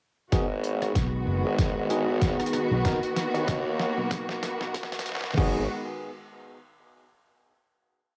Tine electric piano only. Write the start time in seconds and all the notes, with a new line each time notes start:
0.32 B3 D#4 F#4 G#4
1.90 B3 D#4 F#4 G#4
2.85 B3 D#4 F#4 A#4
5.38 B3 D#4 F#4 G#4